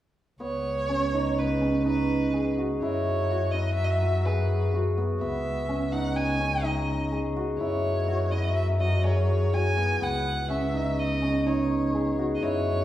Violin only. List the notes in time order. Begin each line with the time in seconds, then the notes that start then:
0.42 C#5
1.39 B4
1.87 B4
2.82 C#5
3.51 D#5
3.73 E5
3.84 D#5
3.89 E5
4.25 B4
5.21 E5
5.92 F#5
6.16 G#5
6.64 D#5
7.59 C#5
8.31 D#5
8.56 E5
8.79 D#5
9.04 C#5
9.53 G#5
10.03 F#5
10.51 E5
10.99 D#5
11.47 C#5
12.35 D#5
12.43 C#5